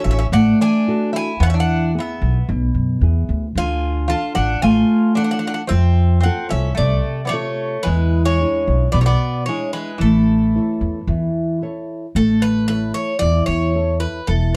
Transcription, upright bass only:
0.05 0.24 A1 medium
0.32 0.51 A1 medium
1.40 1.97 E2 medium
2.21 2.40 B1 medium
2.49 2.67 B1 medium
2.74 2.99 F#2 medium
3.01 3.26 E2 medium
3.29 3.53 D2 medium
3.55 4.12 D2 medium
4.36 4.55 A1 medium
4.63 4.82 A1 medium
5.71 6.27 F2 medium
6.52 6.71 C2 medium
6.79 6.98 C2 medium
7.87 8.43 E2 medium
8.67 8.86 B1 medium
8.94 9.13 B1 medium
10.00 10.57 A1 medium
10.81 11.00 E2 medium
11.07 11.27 E2 medium
12.15 12.90 A1 medium
13.22 13.41 E2 medium
13.48 14.05 E2 medium
14.28 14.56 E1 medium

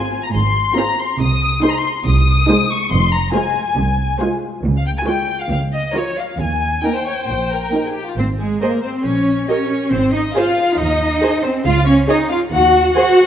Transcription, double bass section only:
0.34 0.68 G#1 medium
1.20 1.54 C2 medium
2.06 2.40 C2 medium
2.92 3.26 F1 medium
3.78 4.13 C2 medium
4.64 4.98 C#2 medium
5.51 5.85 C#2 soft
6.39 6.75 D#2 soft
7.29 7.65 A#1 soft
8.18 8.53 G#1 soft
9.05 9.39 A#1 soft
9.92 10.26 G#1 soft
10.79 11.13 D#2 soft
11.65 12.00 C#2 medium
12.52 12.86 D#2 medium

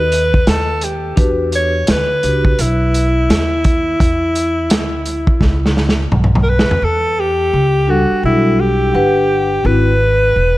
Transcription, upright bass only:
0.00 0.44 D#2 medium
0.47 1.14 D#2 medium
1.18 1.85 E2 loud
1.89 2.22 D2 loud
2.24 2.57 C#2 medium
2.59 3.26 B1 medium
3.30 3.97 D#2 medium
4.00 4.71 E2 loud
4.71 5.25 D2 medium
5.41 6.08 C#2 medium
6.11 6.66 B1 medium
6.70 muted upright bass stroke soft
6.82 7.49 E2 loud
7.53 8.08 C#2 medium
8.11 muted upright bass stroke soft
8.23 8.90 B1 medium
8.95 9.61 G1 medium
9.65 10.32 G#1 loud
10.36 10.58 E1 medium

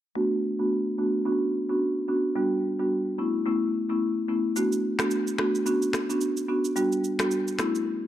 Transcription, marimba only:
0.15 0.37 A3 medium
0.15 0.37 B3 medium
0.15 0.38 D4 medium
0.15 0.38 F#4 medium
0.59 0.79 A3 medium
0.59 0.79 B3 medium
0.59 0.79 D4 medium
0.59 0.79 F#4 medium
0.98 1.20 A3 medium
0.98 1.20 B3 medium
0.98 1.20 D4 medium
0.98 1.20 F#4 medium
1.25 1.65 B3 medium
1.25 1.65 C#4 medium
1.25 1.66 D4 medium
1.25 1.66 F#4 loud
1.69 1.89 B3 medium
1.69 1.89 C#4 medium
1.69 1.89 D4 medium
1.69 1.89 F#4 medium
2.08 2.30 B3 medium
2.08 2.30 C#4 medium
2.08 2.30 D4 medium
2.08 2.30 F#4 medium
2.36 2.58 G3 medium
2.36 2.58 B3 medium
2.36 2.58 D4 medium
2.36 2.58 F#4 medium
2.79 2.99 G3 medium
2.79 2.99 B3 medium
2.79 2.99 D4 medium
2.79 2.99 F#4 medium
3.18 3.40 A3 medium
3.18 3.40 B3 medium
3.18 3.40 C#4 medium
3.18 3.41 E4 medium
3.46 3.86 A3 medium
3.46 3.86 B3 medium
3.46 3.86 C#4 medium
3.46 3.86 E4 medium
3.89 4.09 A3 medium
3.89 4.09 B3 medium
3.89 4.09 C#4 medium
3.89 4.09 E4 medium
4.28 4.50 A3 medium
4.28 4.50 B3 medium
4.28 4.51 C#4 medium
4.28 4.51 E4 medium
4.56 4.78 A3 medium
4.56 4.78 B3 medium
4.56 4.78 D4 medium
4.56 4.78 F#4 loud
4.99 5.19 A3 medium
4.99 5.19 B3 medium
4.99 5.19 D4 medium
4.99 5.19 F#4 medium
5.38 5.60 A3 medium
5.38 5.60 B3 medium
5.38 5.61 D4 medium
5.38 5.61 F#4 medium
5.66 6.06 B3 medium
5.66 6.06 C#4 medium
5.66 6.06 D4 medium
5.66 6.06 F#4 medium
6.09 6.29 B3 medium
6.09 6.29 C#4 medium
6.09 6.29 D4 medium
6.09 6.29 F#4 medium
6.49 6.70 B3 medium
6.49 6.71 C#4 medium
6.49 6.71 D4 medium
6.49 6.71 F#4 medium
6.76 6.98 G3 medium
6.76 6.98 B3 medium
6.76 6.98 D4 medium
6.76 6.98 F#4 medium
7.19 7.39 G3 medium
7.19 7.39 B3 medium
7.19 7.39 D4 medium
7.19 7.40 F#4 medium
7.59 7.81 A3 medium
7.59 7.81 B3 medium
7.59 7.81 C#4 medium
7.59 7.81 E4 medium

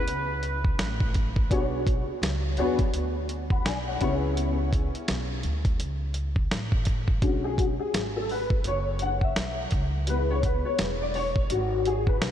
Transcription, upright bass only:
0.08 0.76 C#2 medium
0.79 1.47 A1 medium
1.51 2.05 B1 medium
2.08 muted upright bass stroke medium
2.22 2.56 C#2 medium
2.58 2.92 E2 medium
2.93 3.61 D2 medium
3.65 3.99 B1 medium
4.02 4.90 C#2 loud
4.94 muted upright bass stroke soft
5.09 5.42 B1 medium
5.44 5.78 D2 medium
5.79 6.47 C#2 medium
6.52 7.19 A1 medium
7.22 7.76 B1 medium
7.79 muted upright bass stroke soft
7.94 8.62 G#1 medium
8.65 9.33 F#1 medium
9.36 9.70 B1 medium
9.72 10.61 C#2 medium
10.64 muted upright bass stroke soft
10.79 11.47 E1 medium
11.50 12.18 G#1 medium
12.21 12.31 B1 medium

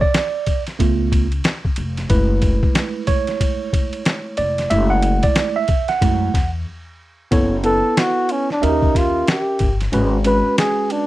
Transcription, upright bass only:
0.80 1.38 C#2 medium
1.78 2.07 F1 medium
2.10 2.57 F#1 loud
4.38 4.67 F1 medium
4.71 5.18 F#1 loud
6.02 6.31 F#2 loud
6.34 6.63 E2 loud
7.32 7.79 F#1 loud
8.63 9.21 D#2 medium
9.61 9.90 G1 medium
9.93 10.40 G#1 loud

